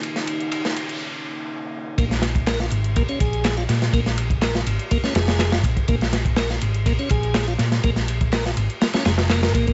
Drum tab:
RD |x-x-x-x---------|x-x-x-x-xxx-x-x-|x-x-x-x-x-xxxxx-|x-x-x-x-xxx-x-x-|
HH |xxxxxxxx--------|xxxxxxxxxxxxxxxx|xxxxxxxxxxxxxxxx|xxxxxxxxxxxxxxxx|
CP |----------------|----x-------x---|----x-------x---|----x-------x---|
SD |-o---o----------|-oo-oo------o-oo|-o--oo---ooooo--|-oo-oo------o-oo|
BD |----------------|o--o----o-o-----|o--o----o-----oo|o--o----o-o-----|

RD |x-x-x-x-xxxxxxx-|
HH |xxxxxxxxxxxxxxxx|
CP |----x-------x---|
SD |-o--oo--oooooo--|
BD |o--o----------oo|